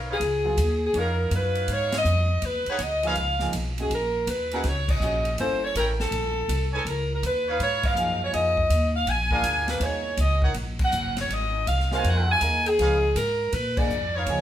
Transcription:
Already playing: upright bass B1
0.08 trumpet section D#4 B4 C#5 F5
0.13 saxophone section G#4
0.20 upright bass C#2, kick, ride
0.44 upright piano F#3 B3 F4 G#4
0.57 upright bass D#2, kick, hi-hat pedal, ride
0.86 saxophone section G#4
0.94 upright bass F2, trumpet section B3 D#4 C#5 F5, kick, ride
0.99 saxophone section A#4
1.31 upright bass F#2, kick, hi-hat pedal, ride
1.36 saxophone section B4
1.55 ride
1.68 upright bass G#2, kick, ride
1.73 saxophone section C#5
1.92 snare, ride
1.97 saxophone section D#5
2.05 upright bass F2, hi-hat pedal
2.42 upright bass D#2, saxophone section B4, kick, ride
2.66 trumpet section D#4 G#4 B4 F#5, saxophone section C#5, muted upright bass stroke, ride
2.79 upright bass D2, saxophone section D#5, kick, hi-hat pedal, ride
3.03 upright piano F3 A#3 D#4 G#4, trumpet section D#4 B4 C#5 F5, ride
3.07 saxophone section F5
3.15 upright bass C#2, kick, ride
3.39 upright piano F3 A#3 D#4 G#4, snare
3.53 upright bass B1, kick, hi-hat pedal, ride
3.78 upright piano G#3 C#4 F#4 G#4, ride
3.82 saxophone section G#4
3.90 upright bass A#1, saxophone section A#4, kick, ride
4.27 upright bass D#2, saxophone section B4, kick, hi-hat pedal, ride
4.51 upright piano G#3 C#4 F#4 A#4, trumpet section E4 G#4 A#4 F#5, ride
4.64 upright bass C#2, kick, snare, ride
4.68 saxophone section C#5
4.88 saxophone section D#5, kick, crash
5.00 upright bass A#1, upright piano G#3 C#4 F#4 C#5, hi-hat pedal
5.25 ride
5.38 upright bass G1, upright piano A#3 C#4 E4 A4, saxophone section C5, kick, ride
5.65 saxophone section C#5
5.75 upright bass A1, trumpet section E4 A#4 C#5 G5, saxophone section A#4, kick, hi-hat pedal, ride
6.00 saxophone section A4, snare
6.11 upright bass A#1, kick, ride
6.48 upright bass C2, kick, hi-hat pedal, ride
6.73 trumpet section D#4 B4 C#5 G#5, saxophone section A4
6.85 upright bass C#2, saxophone section A#4, kick, ride
7.14 saxophone section A#4
7.23 upright bass D#2, saxophone section B4, kick, hi-hat pedal, ride
7.48 trumpet section D#4 B4 C#5 F5
7.59 upright bass G#2, saxophone section C#5, kick, ride
7.83 saxophone section F5, kick, crash
7.95 upright bass F#2, upright piano F3 A#3 D#4 G#4, hi-hat pedal
8.24 saxophone section C#5
8.31 upright bass F2, upright piano F3 A#3 D#4 G#4, saxophone section D#5, kick, ride
8.57 kick
8.70 upright bass D#2, kick, hi-hat pedal, ride
8.96 saxophone section F5
9.06 upright bass A#1, saxophone section G#5, kick, ride
9.31 upright piano A#3 D4 F4 G#4, trumpet section D4 G#4 A#4 F5, kick
9.43 upright bass D2, kick, hi-hat pedal, ride
9.68 saxophone section B4, snare, ride
9.80 upright bass D#2, upright piano A#3 D#4 G#4 C#5, saxophone section C#5, kick, ride
10.17 upright bass C#2, kick, hi-hat pedal, ride
10.21 saxophone section D#5
10.42 trumpet section D#4 A#4 C#5 F#5, kick
10.54 upright bass A#1, kick, ride
10.79 kick, crash
10.84 saxophone section F#5
10.92 upright bass F#1, hi-hat pedal
11.17 snare, ride
11.21 saxophone section C#5
11.29 upright bass G#1, kick, ride
11.34 saxophone section D#5
11.67 upright bass C2, saxophone section F5, kick, hi-hat pedal, ride
11.80 snare
11.91 upright piano A#3 D#4 G#4 C5, trumpet section F#4 A#4 C5 G#5, saxophone section F5, snare
12.04 upright bass F2, kick, ride
12.09 saxophone section F#5
12.32 saxophone section G#5
12.41 upright bass D#2, upright piano A#3 D#4 G#4 A#4, kick, hi-hat pedal, ride
12.66 saxophone section G#4, ride
12.79 upright bass C#2, upright piano F3 A#3 D#4 G#4, trumpet section D#4 B4 C#5 F5, kick, ride
13.16 upright bass G#2, saxophone section A#4, kick, hi-hat pedal, ride
13.53 upright bass A#2, saxophone section B4, kick, ride
13.77 upright piano G#3 A#3 D4 G#4, saxophone section D5, kick, crash
13.89 upright bass F2, hi-hat pedal
14.15 trumpet section D#4 B4 C#5 F5, saxophone section C#5
14.27 upright bass C#2, upright piano F3 A#3 D#4 G#4, kick, ride

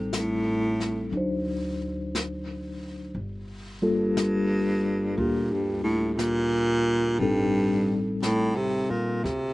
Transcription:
Already playing: upright bass A1, tine electric piano G3 C4 D#4 A4
0.13 brush sweep, snare, hi-hat pedal
0.18 baritone saxophone A2
0.80 snare
1.12 upright bass D2, tine electric piano F#3 D4 D#4, brush sweep
1.17 tine electric piano C5
2.15 brush sweep, snare, hi-hat pedal
3.15 upright bass G1, brush sweep
3.82 baritone saxophone G2, tine electric piano G3 A#3 F4 A4
4.17 brush sweep, snare, hi-hat pedal
5.17 upright bass D2, baritone saxophone A#2, tine electric piano A#3 D4 G4, brush sweep
5.52 baritone saxophone G2
5.83 baritone saxophone A2
6.13 baritone saxophone A2
6.17 baritone saxophone A#2, brush sweep, snare, hi-hat pedal
7.19 upright bass A1, baritone saxophone G2, tine electric piano G3 C4 D#4 A4, brush sweep
8.22 baritone saxophone A2, brush sweep, snare, hi-hat pedal
8.56 baritone saxophone C3
8.90 baritone saxophone A#2, muted upright bass stroke
9.24 upright bass D2, baritone saxophone C3, brush sweep, snare

